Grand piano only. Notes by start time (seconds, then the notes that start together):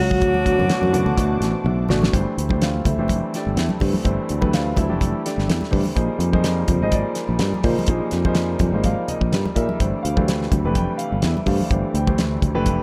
0.45 B2 E3 A3 D4 F#4
0.68 B2 E3 A3 D4 F#4
0.92 B2 E3 A3 D4 F#4
1.16 B2 E3 A3 D4 F#4
1.41 F#5
1.65 E5
1.89 B2 E3 A3 D4 F#4 D5
2.13 E3 A3 D4 G4 C5
2.50 E3 A3 D4 G4 C5
2.62 F4 C5 D5 F5
2.85 E4 A4 C5 E5
2.99 E3 A3 D4 G4 C5
3.35 D4 G4 A4 D5
3.81 E3 A3 D4 G4 C5
4.04 E3 A3 D4 G4 C5
4.41 E3 A3 D4 G4 B4
4.54 F4 C5 D5 F5
4.76 E4 A4 C5 E5
4.89 E3 A3 D4 G4 A4
5.25 D4 G4 A4 D5
5.71 E3 A3 D4 G4 C5
5.95 F3 A#3 D#4 G#4 C5
6.32 F3 A#3 D#4 G#4 C5
6.59 G#4
6.69 C5
6.82 F3 A#3 D#4 G#4 C5 D#5
6.93 D5
7.64 F3 A#3 D#4 G#4 C5
7.89 F3 A#3 D#4 G#4 C5
8.25 F3 A#3 D#4 G#4 C5
8.74 F3 A#3 D#4 G#4 C5
8.85 F5
9.08 D#5
9.33 D5
9.55 F3 A#3 D#4 G#4 A#4 E5
9.80 E3 A3 D4 G4 C5
10.03 F5
10.16 E3 A3 D4 G4 C5
10.65 E3 A3 D4 G4 B4
10.75 G5
10.98 F5
11.25 E5
11.47 E3 A3 D4 G4 C5 F5
11.71 E3 A3 D4 G4 C5
11.95 G5
12.07 E3 A3 D4 G4 C5
12.55 E3 A3 D4 G4 B4